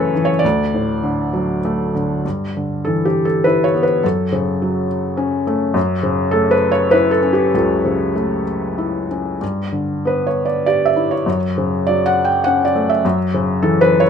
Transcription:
Already playing: F#2 C#3 E3 A3 C#4 A4 B4 C#5
0.15 E3
0.25 C#5
0.39 D5
0.44 D2
0.74 A2
1.03 D3
1.33 F#3
1.65 A3
1.95 D3
2.25 G2
2.57 D3
2.85 E3 A4
3.05 G4
3.25 A4
3.44 E4 B4
3.64 C#5
3.74 B3
3.83 B4
4.03 F#2 A4
4.32 C#3
4.62 F#3
5.17 C#4
5.47 A3
5.74 F#2
6.03 C#3
6.31 A3 A4
6.51 B4
6.72 C#5
6.91 E4 B4
7.11 A4
7.22 C#4
7.33 G4
7.54 C#2 A4
7.85 C#3
8.16 A3
8.78 E4
9.11 C#4
9.41 G2
9.72 D3
10.05 B3 B4
10.27 C#5
10.45 D5
10.66 G4 D5
10.85 E5
10.96 E4
11.11 C#5
11.26 F#2
11.58 C#3
11.87 F#3 D5
12.06 F#5
12.25 G5
12.44 C#4 F#5
12.65 D5
12.75 A3
12.89 E5
13.05 F#2
13.34 C#3
13.62 E3 A4
13.81 B4
14.00 C#5

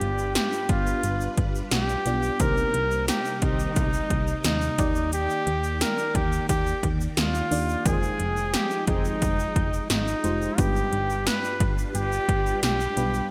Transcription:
Already playing: G2 G3 B3 D4 F4 G4 B4 D5
0.01 G1, closed hi-hat
0.18 shaker
0.35 G4, snare, closed hi-hat, tambourine, shaker
0.53 shaker
0.69 G1 F4, kick, closed hi-hat
0.87 shaker
1.03 G1, closed hi-hat, shaker
1.21 shaker
1.37 G1, kick, closed hi-hat
1.55 shaker
1.71 B1 G4, snare, closed hi-hat, tambourine, shaker
1.89 shaker
2.05 B1 B3 D4 F4 G4 D5, closed hi-hat, shaker
2.23 shaker
2.40 C2 C3 D#3 A#3 C4 D#4 G4 A#4 C5, kick, closed hi-hat, shaker
2.57 shaker
2.74 C2, closed hi-hat
2.91 shaker
3.08 G4, snare, closed hi-hat, tambourine, shaker
3.25 shaker
3.42 C2 D#3 C4 D#4 G4, kick, closed hi-hat
3.59 shaker
3.76 C2, kick, closed hi-hat, shaker
3.93 shaker
4.10 C2, kick, closed hi-hat
4.27 shaker
4.44 D#2 D#4, snare, closed hi-hat, tambourine, shaker
4.61 shaker
4.78 D#2 D#3 A#3 D#4 G4 D5 G5, kick, closed hi-hat, shaker
4.95 shaker
5.12 G4, closed hi-hat, shaker
5.30 shaker
5.47 D#2, closed hi-hat
5.64 shaker
5.81 A#4, snare, closed hi-hat, tambourine, shaker
5.98 shaker
6.15 D#2 G4, kick, closed hi-hat
6.32 shaker
6.49 D#2 G4, kick, closed hi-hat, shaker
6.67 shaker
6.83 D#2, kick, closed hi-hat
7.01 shaker
7.17 D#2 F4, snare, closed hi-hat, tambourine, shaker
7.35 shaker
7.51 D#2 A#3 D4 D#4 G4 D5, open hi-hat, shaker
7.69 shaker
7.85 F1 D#3 F3 G#3 C4 D#4 F4 G#4 A#4 G5, kick, closed hi-hat, shaker
7.93 C5
8.03 shaker
8.20 F1, closed hi-hat
8.37 shaker
8.54 G4, snare, closed hi-hat, tambourine, shaker
8.71 shaker
8.87 F1 D#3 C4 D#4 G#4, kick, closed hi-hat
9.05 shaker
9.22 F1, kick, closed hi-hat, shaker
9.39 shaker
9.56 F1, kick, closed hi-hat
9.74 shaker
9.90 G#1 D#4, snare, closed hi-hat, tambourine, shaker
10.08 shaker
10.24 F1 G#3 D#4 F4 G4 C5, closed hi-hat, shaker
10.42 shaker
10.58 G1 G2 G3 B3 D4 F4 G4 B4, kick, closed hi-hat, shaker
10.76 shaker
10.92 G1, closed hi-hat
11.10 shaker
11.27 B4, snare, closed hi-hat, tambourine, shaker
11.44 shaker
11.60 G1, kick, closed hi-hat
11.78 shaker
11.95 G1 G4, closed hi-hat, shaker
12.12 shaker
12.29 G1, kick, closed hi-hat
12.46 shaker
12.63 B1 G4, snare, closed hi-hat, tambourine, shaker
12.80 shaker
12.96 B1 G3 B3 D4 F4 B4, closed hi-hat, shaker
13.14 shaker

